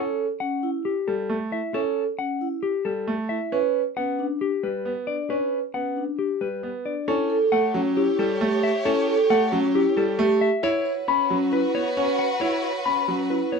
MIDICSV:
0, 0, Header, 1, 5, 480
1, 0, Start_track
1, 0, Tempo, 444444
1, 1882, Time_signature, 4, 2, 24, 8
1, 14684, End_track
2, 0, Start_track
2, 0, Title_t, "Clean electric guitar"
2, 0, Program_c, 0, 27
2, 0, Note_on_c, 0, 69, 77
2, 272, Note_off_c, 0, 69, 0
2, 434, Note_on_c, 0, 78, 64
2, 752, Note_off_c, 0, 78, 0
2, 919, Note_on_c, 0, 67, 55
2, 1162, Note_on_c, 0, 69, 70
2, 1233, Note_off_c, 0, 67, 0
2, 1474, Note_off_c, 0, 69, 0
2, 1645, Note_on_c, 0, 76, 62
2, 1882, Note_on_c, 0, 69, 85
2, 1956, Note_off_c, 0, 76, 0
2, 2194, Note_off_c, 0, 69, 0
2, 2360, Note_on_c, 0, 78, 63
2, 2674, Note_off_c, 0, 78, 0
2, 2836, Note_on_c, 0, 67, 55
2, 3077, Note_on_c, 0, 69, 67
2, 3152, Note_off_c, 0, 67, 0
2, 3393, Note_off_c, 0, 69, 0
2, 3554, Note_on_c, 0, 76, 64
2, 3805, Note_on_c, 0, 71, 77
2, 3872, Note_off_c, 0, 76, 0
2, 4115, Note_off_c, 0, 71, 0
2, 4284, Note_on_c, 0, 78, 61
2, 4595, Note_off_c, 0, 78, 0
2, 4765, Note_on_c, 0, 67, 57
2, 5006, Note_on_c, 0, 71, 61
2, 5075, Note_off_c, 0, 67, 0
2, 5316, Note_off_c, 0, 71, 0
2, 5476, Note_on_c, 0, 74, 58
2, 5722, Note_on_c, 0, 71, 73
2, 5793, Note_off_c, 0, 74, 0
2, 6035, Note_off_c, 0, 71, 0
2, 6201, Note_on_c, 0, 78, 58
2, 6514, Note_off_c, 0, 78, 0
2, 6681, Note_on_c, 0, 67, 54
2, 6924, Note_on_c, 0, 71, 58
2, 6994, Note_off_c, 0, 67, 0
2, 7235, Note_off_c, 0, 71, 0
2, 7404, Note_on_c, 0, 74, 56
2, 7645, Note_on_c, 0, 69, 109
2, 7715, Note_off_c, 0, 74, 0
2, 7956, Note_off_c, 0, 69, 0
2, 8121, Note_on_c, 0, 78, 85
2, 8434, Note_off_c, 0, 78, 0
2, 8607, Note_on_c, 0, 67, 75
2, 8846, Note_on_c, 0, 69, 83
2, 8916, Note_off_c, 0, 67, 0
2, 9156, Note_off_c, 0, 69, 0
2, 9325, Note_on_c, 0, 76, 85
2, 9561, Note_on_c, 0, 69, 106
2, 9636, Note_off_c, 0, 76, 0
2, 9874, Note_off_c, 0, 69, 0
2, 10048, Note_on_c, 0, 78, 87
2, 10357, Note_off_c, 0, 78, 0
2, 10532, Note_on_c, 0, 67, 78
2, 10770, Note_on_c, 0, 69, 84
2, 10838, Note_off_c, 0, 67, 0
2, 11077, Note_off_c, 0, 69, 0
2, 11246, Note_on_c, 0, 76, 87
2, 11485, Note_on_c, 0, 73, 113
2, 11556, Note_off_c, 0, 76, 0
2, 11796, Note_off_c, 0, 73, 0
2, 11970, Note_on_c, 0, 83, 86
2, 12277, Note_off_c, 0, 83, 0
2, 12449, Note_on_c, 0, 71, 83
2, 12687, Note_on_c, 0, 73, 80
2, 12757, Note_off_c, 0, 71, 0
2, 12996, Note_off_c, 0, 73, 0
2, 13165, Note_on_c, 0, 78, 70
2, 13402, Note_on_c, 0, 73, 88
2, 13475, Note_off_c, 0, 78, 0
2, 13714, Note_off_c, 0, 73, 0
2, 13884, Note_on_c, 0, 83, 80
2, 14195, Note_off_c, 0, 83, 0
2, 14367, Note_on_c, 0, 71, 68
2, 14605, Note_on_c, 0, 73, 72
2, 14676, Note_off_c, 0, 71, 0
2, 14684, Note_off_c, 0, 73, 0
2, 14684, End_track
3, 0, Start_track
3, 0, Title_t, "Violin section"
3, 0, Program_c, 1, 48
3, 7646, Note_on_c, 1, 67, 78
3, 7647, Note_on_c, 1, 73, 82
3, 11201, Note_off_c, 1, 67, 0
3, 11202, Note_off_c, 1, 73, 0
3, 11485, Note_on_c, 1, 66, 96
3, 11488, Note_on_c, 1, 71, 91
3, 14684, Note_off_c, 1, 66, 0
3, 14684, Note_off_c, 1, 71, 0
3, 14684, End_track
4, 0, Start_track
4, 0, Title_t, "Vibraphone"
4, 0, Program_c, 2, 11
4, 0, Note_on_c, 2, 69, 71
4, 275, Note_off_c, 2, 69, 0
4, 443, Note_on_c, 2, 61, 58
4, 681, Note_on_c, 2, 64, 87
4, 755, Note_off_c, 2, 61, 0
4, 994, Note_off_c, 2, 64, 0
4, 1642, Note_on_c, 2, 64, 64
4, 1881, Note_on_c, 2, 69, 81
4, 1955, Note_off_c, 2, 64, 0
4, 2194, Note_off_c, 2, 69, 0
4, 2362, Note_on_c, 2, 61, 55
4, 2605, Note_on_c, 2, 64, 76
4, 2675, Note_off_c, 2, 61, 0
4, 2916, Note_off_c, 2, 64, 0
4, 3563, Note_on_c, 2, 64, 66
4, 3803, Note_on_c, 2, 71, 75
4, 3875, Note_off_c, 2, 64, 0
4, 4115, Note_off_c, 2, 71, 0
4, 4283, Note_on_c, 2, 61, 52
4, 4523, Note_on_c, 2, 62, 74
4, 4595, Note_off_c, 2, 61, 0
4, 4835, Note_off_c, 2, 62, 0
4, 5483, Note_on_c, 2, 62, 54
4, 5724, Note_on_c, 2, 71, 65
4, 5795, Note_off_c, 2, 62, 0
4, 6035, Note_off_c, 2, 71, 0
4, 6202, Note_on_c, 2, 61, 45
4, 6441, Note_on_c, 2, 62, 69
4, 6514, Note_off_c, 2, 61, 0
4, 6754, Note_off_c, 2, 62, 0
4, 7402, Note_on_c, 2, 62, 61
4, 7644, Note_on_c, 2, 64, 80
4, 7714, Note_off_c, 2, 62, 0
4, 7882, Note_on_c, 2, 69, 105
4, 7955, Note_off_c, 2, 64, 0
4, 8195, Note_off_c, 2, 69, 0
4, 8364, Note_on_c, 2, 61, 89
4, 8604, Note_on_c, 2, 64, 98
4, 8675, Note_off_c, 2, 61, 0
4, 8915, Note_off_c, 2, 64, 0
4, 9081, Note_on_c, 2, 67, 77
4, 9394, Note_off_c, 2, 67, 0
4, 9563, Note_on_c, 2, 64, 82
4, 9799, Note_on_c, 2, 69, 104
4, 9875, Note_off_c, 2, 64, 0
4, 10113, Note_off_c, 2, 69, 0
4, 10279, Note_on_c, 2, 61, 93
4, 10522, Note_on_c, 2, 64, 109
4, 10593, Note_off_c, 2, 61, 0
4, 10834, Note_off_c, 2, 64, 0
4, 11001, Note_on_c, 2, 67, 94
4, 11314, Note_off_c, 2, 67, 0
4, 11482, Note_on_c, 2, 64, 76
4, 11721, Note_on_c, 2, 73, 98
4, 11795, Note_off_c, 2, 64, 0
4, 12034, Note_off_c, 2, 73, 0
4, 12203, Note_on_c, 2, 61, 86
4, 12440, Note_on_c, 2, 64, 107
4, 12515, Note_off_c, 2, 61, 0
4, 12754, Note_off_c, 2, 64, 0
4, 12924, Note_on_c, 2, 71, 77
4, 13235, Note_off_c, 2, 71, 0
4, 13406, Note_on_c, 2, 64, 73
4, 13641, Note_on_c, 2, 73, 88
4, 13716, Note_off_c, 2, 64, 0
4, 13954, Note_off_c, 2, 73, 0
4, 14125, Note_on_c, 2, 61, 77
4, 14363, Note_on_c, 2, 64, 89
4, 14435, Note_off_c, 2, 61, 0
4, 14675, Note_off_c, 2, 64, 0
4, 14684, End_track
5, 0, Start_track
5, 0, Title_t, "Grand piano"
5, 0, Program_c, 3, 0
5, 0, Note_on_c, 3, 61, 73
5, 274, Note_off_c, 3, 61, 0
5, 1162, Note_on_c, 3, 55, 66
5, 1399, Note_on_c, 3, 57, 76
5, 1474, Note_off_c, 3, 55, 0
5, 1714, Note_off_c, 3, 57, 0
5, 1881, Note_on_c, 3, 61, 74
5, 2194, Note_off_c, 3, 61, 0
5, 3080, Note_on_c, 3, 55, 63
5, 3321, Note_on_c, 3, 57, 78
5, 3394, Note_off_c, 3, 55, 0
5, 3634, Note_off_c, 3, 57, 0
5, 3804, Note_on_c, 3, 61, 76
5, 4115, Note_off_c, 3, 61, 0
5, 4282, Note_on_c, 3, 59, 68
5, 4594, Note_off_c, 3, 59, 0
5, 5002, Note_on_c, 3, 55, 57
5, 5241, Note_on_c, 3, 59, 71
5, 5315, Note_off_c, 3, 55, 0
5, 5554, Note_off_c, 3, 59, 0
5, 5722, Note_on_c, 3, 61, 69
5, 6035, Note_off_c, 3, 61, 0
5, 6198, Note_on_c, 3, 59, 60
5, 6513, Note_off_c, 3, 59, 0
5, 6920, Note_on_c, 3, 55, 51
5, 7161, Note_on_c, 3, 59, 69
5, 7234, Note_off_c, 3, 55, 0
5, 7474, Note_off_c, 3, 59, 0
5, 7644, Note_on_c, 3, 61, 92
5, 7955, Note_off_c, 3, 61, 0
5, 8123, Note_on_c, 3, 57, 80
5, 8362, Note_on_c, 3, 54, 97
5, 8435, Note_off_c, 3, 57, 0
5, 8674, Note_off_c, 3, 54, 0
5, 8843, Note_on_c, 3, 55, 87
5, 9083, Note_on_c, 3, 57, 95
5, 9155, Note_off_c, 3, 55, 0
5, 9395, Note_off_c, 3, 57, 0
5, 9564, Note_on_c, 3, 61, 108
5, 9875, Note_off_c, 3, 61, 0
5, 10045, Note_on_c, 3, 57, 84
5, 10283, Note_on_c, 3, 54, 104
5, 10356, Note_off_c, 3, 57, 0
5, 10595, Note_off_c, 3, 54, 0
5, 10764, Note_on_c, 3, 55, 83
5, 11003, Note_on_c, 3, 57, 107
5, 11075, Note_off_c, 3, 55, 0
5, 11315, Note_off_c, 3, 57, 0
5, 11481, Note_on_c, 3, 64, 102
5, 11794, Note_off_c, 3, 64, 0
5, 11964, Note_on_c, 3, 61, 89
5, 12208, Note_on_c, 3, 54, 91
5, 12275, Note_off_c, 3, 61, 0
5, 12517, Note_off_c, 3, 54, 0
5, 12684, Note_on_c, 3, 59, 73
5, 12928, Note_on_c, 3, 61, 102
5, 12995, Note_off_c, 3, 59, 0
5, 13237, Note_off_c, 3, 61, 0
5, 13403, Note_on_c, 3, 64, 89
5, 13715, Note_off_c, 3, 64, 0
5, 13885, Note_on_c, 3, 61, 69
5, 14127, Note_on_c, 3, 54, 91
5, 14196, Note_off_c, 3, 61, 0
5, 14436, Note_off_c, 3, 54, 0
5, 14601, Note_on_c, 3, 59, 65
5, 14684, Note_off_c, 3, 59, 0
5, 14684, End_track
0, 0, End_of_file